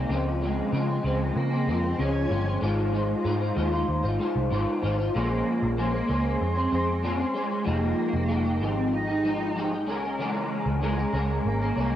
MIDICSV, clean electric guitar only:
0, 0, Header, 1, 2, 480
1, 0, Start_track
1, 0, Tempo, 630716
1, 77, Time_signature, 4, 2, 24, 8
1, 9099, End_track
2, 0, Start_track
2, 0, Title_t, "Clean electric guitar"
2, 0, Program_c, 0, 27
2, 0, Note_on_c, 0, 51, 41
2, 0, Note_on_c, 0, 56, 45
2, 72, Note_on_c, 0, 49, 85
2, 78, Note_off_c, 0, 56, 0
2, 79, Note_off_c, 0, 51, 0
2, 82, Note_on_c, 0, 53, 78
2, 88, Note_on_c, 0, 56, 83
2, 94, Note_on_c, 0, 60, 92
2, 305, Note_off_c, 0, 49, 0
2, 313, Note_off_c, 0, 53, 0
2, 314, Note_on_c, 0, 49, 62
2, 322, Note_off_c, 0, 56, 0
2, 322, Note_on_c, 0, 53, 64
2, 326, Note_off_c, 0, 60, 0
2, 334, Note_on_c, 0, 56, 58
2, 342, Note_on_c, 0, 60, 65
2, 544, Note_off_c, 0, 49, 0
2, 553, Note_on_c, 0, 49, 81
2, 554, Note_off_c, 0, 53, 0
2, 560, Note_off_c, 0, 56, 0
2, 563, Note_on_c, 0, 53, 67
2, 565, Note_off_c, 0, 60, 0
2, 569, Note_on_c, 0, 56, 84
2, 574, Note_on_c, 0, 60, 71
2, 657, Note_off_c, 0, 60, 0
2, 666, Note_on_c, 0, 60, 48
2, 675, Note_off_c, 0, 49, 0
2, 675, Note_off_c, 0, 56, 0
2, 680, Note_off_c, 0, 53, 0
2, 684, Note_on_c, 0, 56, 41
2, 695, Note_on_c, 0, 53, 39
2, 786, Note_on_c, 0, 49, 58
2, 788, Note_off_c, 0, 53, 0
2, 791, Note_off_c, 0, 60, 0
2, 797, Note_on_c, 0, 53, 61
2, 801, Note_off_c, 0, 56, 0
2, 809, Note_on_c, 0, 56, 66
2, 816, Note_on_c, 0, 60, 71
2, 1142, Note_off_c, 0, 60, 0
2, 1151, Note_off_c, 0, 49, 0
2, 1151, Note_on_c, 0, 60, 53
2, 1157, Note_off_c, 0, 53, 0
2, 1158, Note_off_c, 0, 56, 0
2, 1167, Note_on_c, 0, 56, 41
2, 1181, Note_on_c, 0, 53, 36
2, 1267, Note_on_c, 0, 49, 50
2, 1272, Note_off_c, 0, 53, 0
2, 1274, Note_off_c, 0, 60, 0
2, 1279, Note_off_c, 0, 56, 0
2, 1281, Note_on_c, 0, 53, 61
2, 1288, Note_on_c, 0, 56, 61
2, 1299, Note_on_c, 0, 60, 65
2, 1502, Note_off_c, 0, 49, 0
2, 1510, Note_off_c, 0, 53, 0
2, 1511, Note_on_c, 0, 49, 75
2, 1519, Note_off_c, 0, 56, 0
2, 1520, Note_on_c, 0, 53, 73
2, 1528, Note_off_c, 0, 60, 0
2, 1528, Note_on_c, 0, 56, 86
2, 1735, Note_off_c, 0, 49, 0
2, 1744, Note_on_c, 0, 49, 66
2, 1747, Note_off_c, 0, 53, 0
2, 1755, Note_off_c, 0, 56, 0
2, 1756, Note_on_c, 0, 53, 69
2, 1764, Note_on_c, 0, 56, 62
2, 1774, Note_on_c, 0, 60, 62
2, 1854, Note_off_c, 0, 60, 0
2, 1863, Note_on_c, 0, 60, 46
2, 1871, Note_off_c, 0, 49, 0
2, 1872, Note_off_c, 0, 56, 0
2, 1876, Note_off_c, 0, 53, 0
2, 1881, Note_on_c, 0, 56, 44
2, 1892, Note_on_c, 0, 53, 43
2, 1978, Note_off_c, 0, 56, 0
2, 1987, Note_on_c, 0, 56, 82
2, 1989, Note_off_c, 0, 53, 0
2, 1990, Note_off_c, 0, 60, 0
2, 1992, Note_on_c, 0, 63, 82
2, 2002, Note_on_c, 0, 65, 86
2, 2005, Note_on_c, 0, 72, 89
2, 2215, Note_off_c, 0, 56, 0
2, 2224, Note_on_c, 0, 56, 52
2, 2226, Note_off_c, 0, 63, 0
2, 2235, Note_on_c, 0, 63, 52
2, 2236, Note_off_c, 0, 65, 0
2, 2241, Note_off_c, 0, 72, 0
2, 2245, Note_on_c, 0, 65, 64
2, 2255, Note_on_c, 0, 72, 55
2, 2457, Note_off_c, 0, 56, 0
2, 2466, Note_on_c, 0, 56, 64
2, 2467, Note_off_c, 0, 63, 0
2, 2474, Note_off_c, 0, 65, 0
2, 2476, Note_on_c, 0, 63, 71
2, 2480, Note_off_c, 0, 72, 0
2, 2483, Note_on_c, 0, 65, 69
2, 2489, Note_on_c, 0, 72, 71
2, 2581, Note_off_c, 0, 72, 0
2, 2590, Note_on_c, 0, 72, 57
2, 2592, Note_off_c, 0, 56, 0
2, 2596, Note_off_c, 0, 63, 0
2, 2596, Note_off_c, 0, 65, 0
2, 2605, Note_on_c, 0, 65, 47
2, 2620, Note_on_c, 0, 63, 47
2, 2703, Note_on_c, 0, 56, 67
2, 2707, Note_off_c, 0, 63, 0
2, 2714, Note_off_c, 0, 65, 0
2, 2714, Note_off_c, 0, 72, 0
2, 2717, Note_on_c, 0, 63, 62
2, 2723, Note_on_c, 0, 65, 67
2, 2732, Note_on_c, 0, 72, 79
2, 2819, Note_off_c, 0, 72, 0
2, 2828, Note_on_c, 0, 72, 54
2, 2830, Note_off_c, 0, 56, 0
2, 2834, Note_off_c, 0, 65, 0
2, 2837, Note_off_c, 0, 63, 0
2, 2843, Note_on_c, 0, 65, 47
2, 2856, Note_on_c, 0, 63, 50
2, 3057, Note_off_c, 0, 72, 0
2, 3066, Note_on_c, 0, 72, 56
2, 3072, Note_off_c, 0, 65, 0
2, 3081, Note_on_c, 0, 65, 49
2, 3086, Note_off_c, 0, 63, 0
2, 3096, Note_on_c, 0, 63, 45
2, 3187, Note_on_c, 0, 56, 62
2, 3191, Note_off_c, 0, 63, 0
2, 3191, Note_off_c, 0, 72, 0
2, 3197, Note_off_c, 0, 65, 0
2, 3200, Note_on_c, 0, 63, 56
2, 3206, Note_on_c, 0, 65, 71
2, 3216, Note_on_c, 0, 72, 68
2, 3419, Note_off_c, 0, 56, 0
2, 3428, Note_off_c, 0, 63, 0
2, 3428, Note_on_c, 0, 56, 77
2, 3434, Note_off_c, 0, 65, 0
2, 3437, Note_on_c, 0, 63, 88
2, 3439, Note_off_c, 0, 72, 0
2, 3444, Note_on_c, 0, 65, 84
2, 3448, Note_on_c, 0, 72, 79
2, 3655, Note_off_c, 0, 56, 0
2, 3665, Note_on_c, 0, 56, 71
2, 3668, Note_off_c, 0, 63, 0
2, 3677, Note_off_c, 0, 65, 0
2, 3677, Note_on_c, 0, 63, 71
2, 3683, Note_off_c, 0, 72, 0
2, 3686, Note_on_c, 0, 65, 74
2, 3694, Note_on_c, 0, 72, 80
2, 3777, Note_off_c, 0, 72, 0
2, 3786, Note_on_c, 0, 72, 55
2, 3791, Note_off_c, 0, 56, 0
2, 3795, Note_off_c, 0, 65, 0
2, 3797, Note_off_c, 0, 63, 0
2, 3804, Note_on_c, 0, 65, 54
2, 3817, Note_on_c, 0, 63, 43
2, 3912, Note_off_c, 0, 72, 0
2, 3913, Note_on_c, 0, 46, 75
2, 3919, Note_on_c, 0, 53, 74
2, 3920, Note_off_c, 0, 65, 0
2, 3921, Note_off_c, 0, 63, 0
2, 3924, Note_on_c, 0, 56, 81
2, 3926, Note_on_c, 0, 61, 78
2, 3931, Note_on_c, 0, 68, 84
2, 3934, Note_on_c, 0, 72, 80
2, 4381, Note_off_c, 0, 46, 0
2, 4390, Note_on_c, 0, 46, 67
2, 4395, Note_off_c, 0, 53, 0
2, 4397, Note_off_c, 0, 61, 0
2, 4398, Note_off_c, 0, 56, 0
2, 4398, Note_on_c, 0, 53, 71
2, 4401, Note_on_c, 0, 56, 76
2, 4406, Note_off_c, 0, 68, 0
2, 4406, Note_on_c, 0, 61, 74
2, 4407, Note_off_c, 0, 72, 0
2, 4409, Note_on_c, 0, 68, 72
2, 4410, Note_on_c, 0, 72, 69
2, 4494, Note_off_c, 0, 72, 0
2, 4504, Note_on_c, 0, 72, 51
2, 4509, Note_off_c, 0, 68, 0
2, 4513, Note_off_c, 0, 46, 0
2, 4517, Note_off_c, 0, 53, 0
2, 4517, Note_off_c, 0, 61, 0
2, 4518, Note_on_c, 0, 68, 43
2, 4519, Note_off_c, 0, 56, 0
2, 4526, Note_on_c, 0, 61, 40
2, 4533, Note_on_c, 0, 56, 37
2, 4615, Note_off_c, 0, 56, 0
2, 4624, Note_on_c, 0, 56, 64
2, 4625, Note_off_c, 0, 61, 0
2, 4630, Note_off_c, 0, 72, 0
2, 4634, Note_off_c, 0, 68, 0
2, 4634, Note_on_c, 0, 61, 56
2, 4643, Note_on_c, 0, 68, 62
2, 4653, Note_on_c, 0, 72, 63
2, 4974, Note_off_c, 0, 72, 0
2, 4983, Note_on_c, 0, 72, 48
2, 4985, Note_off_c, 0, 68, 0
2, 4990, Note_off_c, 0, 56, 0
2, 4994, Note_on_c, 0, 68, 48
2, 4995, Note_off_c, 0, 61, 0
2, 5004, Note_on_c, 0, 61, 39
2, 5012, Note_on_c, 0, 56, 38
2, 5095, Note_off_c, 0, 56, 0
2, 5104, Note_on_c, 0, 56, 53
2, 5110, Note_off_c, 0, 72, 0
2, 5115, Note_off_c, 0, 68, 0
2, 5121, Note_off_c, 0, 61, 0
2, 5125, Note_on_c, 0, 68, 57
2, 5134, Note_on_c, 0, 72, 57
2, 5347, Note_off_c, 0, 56, 0
2, 5349, Note_on_c, 0, 46, 77
2, 5352, Note_on_c, 0, 53, 78
2, 5356, Note_off_c, 0, 68, 0
2, 5356, Note_on_c, 0, 56, 75
2, 5360, Note_off_c, 0, 72, 0
2, 5363, Note_on_c, 0, 61, 83
2, 5365, Note_on_c, 0, 68, 73
2, 5369, Note_on_c, 0, 72, 81
2, 5452, Note_off_c, 0, 72, 0
2, 5461, Note_on_c, 0, 72, 51
2, 5463, Note_off_c, 0, 68, 0
2, 5472, Note_on_c, 0, 68, 42
2, 5473, Note_off_c, 0, 46, 0
2, 5475, Note_off_c, 0, 53, 0
2, 5475, Note_off_c, 0, 61, 0
2, 5477, Note_off_c, 0, 56, 0
2, 5484, Note_on_c, 0, 61, 40
2, 5492, Note_on_c, 0, 56, 39
2, 5577, Note_off_c, 0, 56, 0
2, 5586, Note_on_c, 0, 56, 56
2, 5589, Note_off_c, 0, 72, 0
2, 5590, Note_off_c, 0, 61, 0
2, 5595, Note_off_c, 0, 68, 0
2, 5599, Note_on_c, 0, 61, 60
2, 5607, Note_on_c, 0, 68, 67
2, 5617, Note_on_c, 0, 72, 69
2, 5689, Note_off_c, 0, 72, 0
2, 5699, Note_on_c, 0, 72, 48
2, 5700, Note_off_c, 0, 68, 0
2, 5709, Note_on_c, 0, 68, 42
2, 5711, Note_off_c, 0, 56, 0
2, 5712, Note_off_c, 0, 61, 0
2, 5721, Note_on_c, 0, 61, 43
2, 5728, Note_on_c, 0, 56, 43
2, 5820, Note_off_c, 0, 56, 0
2, 5820, Note_on_c, 0, 53, 84
2, 5828, Note_off_c, 0, 72, 0
2, 5829, Note_on_c, 0, 56, 80
2, 5833, Note_off_c, 0, 68, 0
2, 5834, Note_off_c, 0, 61, 0
2, 5837, Note_on_c, 0, 63, 85
2, 5841, Note_on_c, 0, 67, 82
2, 6291, Note_off_c, 0, 53, 0
2, 6300, Note_on_c, 0, 53, 73
2, 6304, Note_off_c, 0, 56, 0
2, 6307, Note_on_c, 0, 56, 74
2, 6308, Note_off_c, 0, 63, 0
2, 6312, Note_off_c, 0, 67, 0
2, 6317, Note_on_c, 0, 63, 78
2, 6321, Note_on_c, 0, 67, 69
2, 6415, Note_off_c, 0, 67, 0
2, 6424, Note_on_c, 0, 67, 49
2, 6429, Note_off_c, 0, 53, 0
2, 6431, Note_off_c, 0, 63, 0
2, 6432, Note_off_c, 0, 56, 0
2, 6440, Note_on_c, 0, 63, 47
2, 6452, Note_on_c, 0, 56, 39
2, 6547, Note_on_c, 0, 53, 54
2, 6549, Note_off_c, 0, 56, 0
2, 6551, Note_off_c, 0, 67, 0
2, 6558, Note_on_c, 0, 56, 58
2, 6559, Note_off_c, 0, 63, 0
2, 6568, Note_on_c, 0, 63, 71
2, 6576, Note_on_c, 0, 67, 61
2, 6896, Note_off_c, 0, 67, 0
2, 6906, Note_on_c, 0, 67, 46
2, 6912, Note_off_c, 0, 53, 0
2, 6913, Note_off_c, 0, 63, 0
2, 6918, Note_off_c, 0, 56, 0
2, 6922, Note_on_c, 0, 63, 42
2, 6933, Note_on_c, 0, 56, 38
2, 7027, Note_off_c, 0, 56, 0
2, 7027, Note_on_c, 0, 53, 52
2, 7031, Note_off_c, 0, 67, 0
2, 7036, Note_on_c, 0, 56, 57
2, 7040, Note_off_c, 0, 63, 0
2, 7047, Note_on_c, 0, 63, 63
2, 7057, Note_on_c, 0, 67, 63
2, 7261, Note_off_c, 0, 53, 0
2, 7267, Note_off_c, 0, 56, 0
2, 7271, Note_on_c, 0, 53, 72
2, 7276, Note_off_c, 0, 63, 0
2, 7277, Note_on_c, 0, 56, 73
2, 7280, Note_off_c, 0, 67, 0
2, 7285, Note_on_c, 0, 63, 72
2, 7290, Note_on_c, 0, 67, 86
2, 7380, Note_off_c, 0, 67, 0
2, 7389, Note_on_c, 0, 67, 52
2, 7394, Note_off_c, 0, 53, 0
2, 7396, Note_off_c, 0, 63, 0
2, 7397, Note_off_c, 0, 56, 0
2, 7406, Note_on_c, 0, 63, 52
2, 7416, Note_on_c, 0, 56, 44
2, 7499, Note_off_c, 0, 56, 0
2, 7508, Note_on_c, 0, 56, 79
2, 7513, Note_off_c, 0, 67, 0
2, 7515, Note_off_c, 0, 63, 0
2, 7518, Note_on_c, 0, 61, 71
2, 7527, Note_on_c, 0, 68, 72
2, 7535, Note_on_c, 0, 70, 83
2, 7622, Note_off_c, 0, 70, 0
2, 7631, Note_on_c, 0, 70, 52
2, 7632, Note_off_c, 0, 56, 0
2, 7635, Note_off_c, 0, 68, 0
2, 7637, Note_off_c, 0, 61, 0
2, 7644, Note_on_c, 0, 68, 46
2, 7650, Note_on_c, 0, 61, 44
2, 7659, Note_on_c, 0, 56, 43
2, 7747, Note_on_c, 0, 49, 69
2, 7752, Note_off_c, 0, 56, 0
2, 7754, Note_off_c, 0, 70, 0
2, 7754, Note_on_c, 0, 52, 86
2, 7755, Note_off_c, 0, 61, 0
2, 7758, Note_off_c, 0, 68, 0
2, 7761, Note_on_c, 0, 56, 84
2, 7764, Note_on_c, 0, 61, 86
2, 7767, Note_on_c, 0, 68, 87
2, 7770, Note_on_c, 0, 70, 92
2, 8218, Note_off_c, 0, 49, 0
2, 8224, Note_off_c, 0, 52, 0
2, 8227, Note_on_c, 0, 49, 68
2, 8234, Note_on_c, 0, 52, 72
2, 8235, Note_off_c, 0, 56, 0
2, 8238, Note_on_c, 0, 56, 69
2, 8239, Note_off_c, 0, 61, 0
2, 8240, Note_off_c, 0, 68, 0
2, 8242, Note_on_c, 0, 61, 77
2, 8243, Note_on_c, 0, 68, 80
2, 8246, Note_off_c, 0, 70, 0
2, 8249, Note_on_c, 0, 70, 74
2, 8338, Note_off_c, 0, 70, 0
2, 8347, Note_on_c, 0, 70, 47
2, 8352, Note_off_c, 0, 49, 0
2, 8352, Note_off_c, 0, 68, 0
2, 8355, Note_off_c, 0, 52, 0
2, 8357, Note_off_c, 0, 56, 0
2, 8359, Note_off_c, 0, 61, 0
2, 8361, Note_on_c, 0, 68, 41
2, 8368, Note_on_c, 0, 61, 38
2, 8375, Note_on_c, 0, 56, 37
2, 8459, Note_off_c, 0, 56, 0
2, 8468, Note_on_c, 0, 56, 60
2, 8472, Note_off_c, 0, 61, 0
2, 8472, Note_off_c, 0, 70, 0
2, 8479, Note_off_c, 0, 68, 0
2, 8481, Note_on_c, 0, 61, 55
2, 8487, Note_on_c, 0, 68, 67
2, 8495, Note_on_c, 0, 70, 69
2, 8818, Note_off_c, 0, 70, 0
2, 8827, Note_on_c, 0, 70, 53
2, 8830, Note_off_c, 0, 68, 0
2, 8833, Note_off_c, 0, 56, 0
2, 8839, Note_off_c, 0, 61, 0
2, 8839, Note_on_c, 0, 68, 49
2, 8848, Note_on_c, 0, 61, 50
2, 8857, Note_on_c, 0, 56, 38
2, 8940, Note_off_c, 0, 56, 0
2, 8949, Note_on_c, 0, 56, 57
2, 8951, Note_off_c, 0, 61, 0
2, 8952, Note_off_c, 0, 70, 0
2, 8958, Note_off_c, 0, 68, 0
2, 8960, Note_on_c, 0, 61, 61
2, 8972, Note_on_c, 0, 68, 65
2, 8979, Note_on_c, 0, 70, 61
2, 9099, Note_off_c, 0, 56, 0
2, 9099, Note_off_c, 0, 61, 0
2, 9099, Note_off_c, 0, 68, 0
2, 9099, Note_off_c, 0, 70, 0
2, 9099, End_track
0, 0, End_of_file